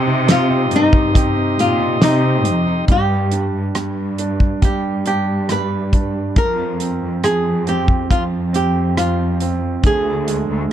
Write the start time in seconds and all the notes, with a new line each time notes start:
Already playing: C3 C4 G4 D#5 C6 D#6
0.07 D#4
0.27 C4 D#4 G4, snare, closed hi-hat
0.31 F4
0.51 D#4
0.71 G2 C4, closed hi-hat
0.76 D#4
0.93 D#4, kick
1.14 C3 C4 D#4 G4, kick, closed hi-hat
1.36 C4
1.58 A#2 F4 G4, closed hi-hat
1.79 D#4
2.01 C3 C4 D#4 G4, snare, closed hi-hat
2.23 D#4
2.45 F2 C4, closed hi-hat
2.67 D#4
2.88 G2 G3 G4, kick, closed hi-hat
3.32 D4, closed hi-hat
3.53 G2
3.75 G2 G3, cross-stick, closed hi-hat
4.18 D4, closed hi-hat
4.40 kick
4.62 G2 G3 G4, kick, closed hi-hat
5.06 D4 G4, closed hi-hat
5.49 G3 B4, cross-stick, closed hi-hat
5.93 D4, kick, closed hi-hat
6.36 F2 F3 A#4, kick, closed hi-hat
6.80 C4, closed hi-hat
7.02 F2
7.24 F2 F3 G#4, cross-stick, closed hi-hat
7.67 C4 G4, closed hi-hat
7.88 kick
8.10 F2 F3 F4, kick, closed hi-hat
8.53 C4 G4, closed hi-hat
8.97 F3 F4, cross-stick, closed hi-hat
9.40 C4, closed hi-hat
9.83 D2 D3 G#4, kick, closed hi-hat
10.27 G#3, closed hi-hat
10.49 D2